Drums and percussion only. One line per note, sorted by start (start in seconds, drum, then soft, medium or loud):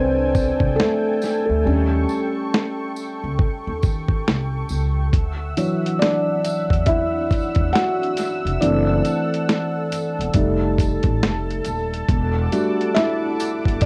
0.35 kick medium
0.35 tambourine medium
0.60 kick medium
0.80 snare loud
1.22 snare soft
1.22 tambourine medium
2.09 tambourine soft
2.54 snare loud
2.96 tambourine medium
3.39 kick loud
3.82 kick medium
3.82 tambourine soft
4.08 kick medium
4.28 snare loud
4.69 tambourine medium
5.13 kick loud
5.13 closed hi-hat medium
5.57 closed hi-hat medium
5.57 tambourine soft
5.86 closed hi-hat soft
6.02 snare loud
6.02 closed hi-hat medium
6.44 closed hi-hat medium
6.44 tambourine medium
6.70 kick medium
6.70 closed hi-hat soft
6.86 kick loud
6.86 closed hi-hat medium
7.31 kick loud
7.31 closed hi-hat medium
7.31 tambourine medium
7.55 kick medium
7.55 closed hi-hat soft
7.76 snare loud
7.76 closed hi-hat medium
8.03 closed hi-hat soft
8.17 snare soft
8.17 closed hi-hat medium
8.17 tambourine medium
8.47 closed hi-hat soft
8.62 closed hi-hat medium
9.05 closed hi-hat medium
9.05 tambourine soft
9.34 closed hi-hat soft
9.49 snare loud
9.49 closed hi-hat medium
9.92 closed hi-hat medium
9.92 tambourine medium
10.21 closed hi-hat soft
10.34 kick loud
10.34 closed hi-hat medium
10.78 kick medium
10.78 closed hi-hat medium
10.78 tambourine medium
11.03 kick medium
11.03 closed hi-hat soft
11.23 snare loud
11.23 closed hi-hat medium
11.50 closed hi-hat soft
11.64 closed hi-hat medium
11.64 tambourine medium
11.94 closed hi-hat soft
12.09 kick loud
12.09 closed hi-hat medium
12.53 closed hi-hat medium
12.53 tambourine soft
12.81 closed hi-hat soft
12.97 snare loud
12.97 closed hi-hat medium
13.40 closed hi-hat medium
13.40 tambourine medium
13.65 kick medium
13.65 closed hi-hat soft
13.81 kick loud
13.81 closed hi-hat loud